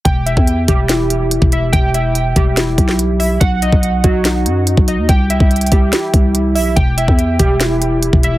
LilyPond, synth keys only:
\new Staff \with { instrumentName = "Synth keys" } { \time 4/4 \key e \minor \tempo 4 = 143 g''8 e''4 g'8 e'4. e''8 | g''8 e''4 g'8 e'4. e''8 | fis''8 dis''4 fis'8 dis'4. dis''8 | g''8 e''4 g'8 e'4. e''8 |
g''8 e''4 g'8 e'4. e''8 | }